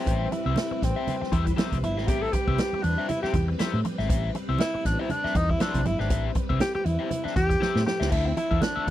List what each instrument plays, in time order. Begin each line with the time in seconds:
Already playing: string machine G3 C4 B4, tenor saxophone C4
0.06 fingered electric bass A1, overdriven electric guitar E4 G4 C5 E5, kick, closed hi-hat
0.32 tenor saxophone E4, muted overdriven electric guitar stroke, closed hi-hat, muted conga
0.46 fingered electric bass C2, overdriven electric guitar E4 G4 C5 E5
0.56 muted overdriven electric guitar stroke, snare, closed hi-hat, high conga
0.71 muted fingered electric bass stroke, muted overdriven electric guitar stroke
0.82 fingered electric bass A1, tenor saxophone C4, kick, snare, closed hi-hat
0.96 overdriven electric guitar E4 G4 C5 E5
1.08 closed hi-hat, muted conga, low conga
1.21 muted overdriven electric guitar stroke, muted fingered electric bass stroke, snare
1.32 fingered electric bass E2, overdriven electric guitar E4 G4 C5 E5, kick, closed hi-hat, muted conga
1.46 muted overdriven electric guitar stroke, kick, closed hi-hat
1.56 overdriven electric guitar E4 G4 C5 E5, snare, closed hi-hat, high conga
1.72 fingered electric bass C2, kick, closed hi-hat, high conga
1.83 fingered electric bass G1, tenor saxophone E4, muted overdriven electric guitar stroke, closed hi-hat, high conga
1.97 fingered electric bass G#1, overdriven electric guitar E4 G4 C5 E5, snare
2.08 fingered electric bass A1, overdriven electric guitar E4 G4 C5 E5, tenor saxophone G4, kick, closed hi-hat, muted conga
2.22 tenor saxophone A4
2.33 tenor saxophone G4, muted overdriven electric guitar stroke, kick, closed hi-hat, muted conga
2.48 fingered electric bass C2, overdriven electric guitar E4 G4 C5 E5, kick
2.58 muted overdriven electric guitar stroke, snare, closed hi-hat, high conga
2.73 muted fingered electric bass stroke, muted overdriven electric guitar stroke
2.83 fingered electric bass E2, tenor saxophone D4, closed hi-hat
2.98 overdriven electric guitar E4 G4 C5 E5
3.08 tenor saxophone E4, muted overdriven electric guitar stroke, closed hi-hat, muted conga, low conga
3.22 overdriven electric guitar E4 G4 C5 E5, tenor saxophone G4, muted fingered electric bass stroke, snare
3.34 fingered electric bass E2, muted overdriven electric guitar stroke, kick, closed hi-hat, muted conga, low conga
3.48 muted overdriven electric guitar stroke
3.59 overdriven electric guitar E4 G4 C5 E5, snare, closed hi-hat, high conga
3.74 fingered electric bass A2, high conga
3.85 muted overdriven electric guitar stroke, closed hi-hat, high conga
3.98 fingered electric bass G#1, overdriven electric guitar E4 G4 C5 E5, snare
4.09 fingered electric bass A1, overdriven electric guitar E4 G4 C5 E5, kick, closed hi-hat, muted conga
4.35 muted overdriven electric guitar stroke, closed hi-hat, muted conga
4.49 fingered electric bass C2, overdriven electric guitar E4 G4 C5 E5
4.59 tenor saxophone E4, muted overdriven electric guitar stroke, snare, closed hi-hat, high conga
4.74 muted overdriven electric guitar stroke, muted fingered electric bass stroke
4.85 fingered electric bass A1, tenor saxophone D4, kick, snare, closed hi-hat
4.99 tenor saxophone E4, overdriven electric guitar E4 G4 C5 E5
5.10 tenor saxophone D4, muted overdriven electric guitar stroke, closed hi-hat, muted conga, low conga
5.24 overdriven electric guitar E4 G4 C5 E5, muted fingered electric bass stroke, snare
5.35 fingered electric bass E2, tenor saxophone D#4, muted overdriven electric guitar stroke, kick, closed hi-hat, muted conga
5.49 tenor saxophone E4, muted overdriven electric guitar stroke, kick
5.60 tenor saxophone D4, overdriven electric guitar E4 G4 C5 E5, snare, closed hi-hat, high conga
5.74 fingered electric bass C2, kick, closed hi-hat, high conga
5.85 fingered electric bass G1, tenor saxophone E4, muted overdriven electric guitar stroke, closed hi-hat, high conga
5.99 fingered electric bass G#1, tenor saxophone D4, overdriven electric guitar E4 G4 C5 E5, snare
6.10 fingered electric bass A1, overdriven electric guitar E4 G4 C5 E5, kick, closed hi-hat
6.35 muted overdriven electric guitar stroke, kick, closed hi-hat, muted conga
6.49 fingered electric bass C2, overdriven electric guitar E4 G4 C5 E5, kick
6.60 tenor saxophone G4, muted overdriven electric guitar stroke, snare, closed hi-hat, high conga
6.75 tenor saxophone G4, muted overdriven electric guitar stroke, muted fingered electric bass stroke
6.85 fingered electric bass E2, tenor saxophone E4, closed hi-hat
6.99 overdriven electric guitar E4 G4 C5 E5
7.10 muted overdriven electric guitar stroke, closed hi-hat, muted conga, low conga
7.24 tenor saxophone D4, overdriven electric guitar E4 G4 C5 E5, muted fingered electric bass stroke, snare
7.35 fingered electric bass E2, tenor saxophone G4, muted overdriven electric guitar stroke, kick, closed hi-hat, muted conga, low conga
7.49 muted overdriven electric guitar stroke, kick, closed hi-hat
7.60 overdriven electric guitar E4 G4 C5 E5, snare, high conga
7.76 fingered electric bass A2, snare
7.86 tenor saxophone G4, muted overdriven electric guitar stroke, snare, high conga
8.00 fingered electric bass C#2, overdriven electric guitar E4 G4 C5 E5, snare
8.10 fingered electric bass D2, string machine F3 C4 E5, overdriven electric guitar C4 F4 A4 E5, tenor saxophone E4, kick, crash, muted conga
8.26 muted overdriven electric guitar stroke
8.37 tenor saxophone E4, muted overdriven electric guitar stroke, closed hi-hat, muted conga
8.51 fingered electric bass E2, overdriven electric guitar C4 F4 A4 E5, kick
8.61 tenor saxophone D4, muted overdriven electric guitar stroke, snare, closed hi-hat, high conga
8.76 overdriven electric guitar C4 F4 A4 E5, muted fingered electric bass stroke
8.87 muted overdriven electric guitar stroke